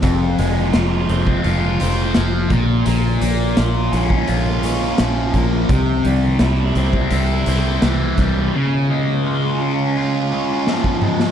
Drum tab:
HH |x-x-x-x-x-x-x-x-|x-x-x-x-x-x-x-x-|x-x-x-x-x-x-x-x-|----------------|
SD |----o-------o---|----o-------o---|----o-------o---|------------o--o|
T2 |----------------|----------------|----------------|--------------o-|
BD |o------o------o-|-------o------o-|o------o------o-|-------------o--|